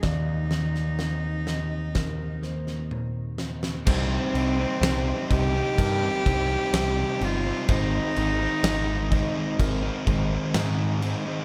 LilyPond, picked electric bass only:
\new Staff \with { instrumentName = "Picked electric bass" } { \clef bass \time 4/4 \key c \minor \tempo 4 = 63 ees,1 | c,8 c,8 c,8 c,8 g,8 c,8 c,8 g,,8 | aes,,8 aes,,8 aes,,4 aes,,8 aes,,8 aes,4 | }